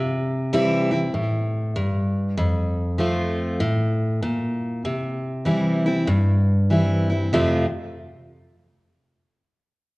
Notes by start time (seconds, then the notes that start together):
Already playing: C3
0.53 E3 G3 C4 E4
0.91 C4 E4
1.14 A2
1.76 G2
2.37 F2
2.98 F3 A3 C4 F4
3.60 A2
4.22 A#2
4.85 C3
5.46 E3 G3 C4 E4
5.86 C4 E4
6.08 G2
6.70 E3 G3 C4 E4
7.10 C4 E4
7.33 F2 C3 F3 A3 C4 F4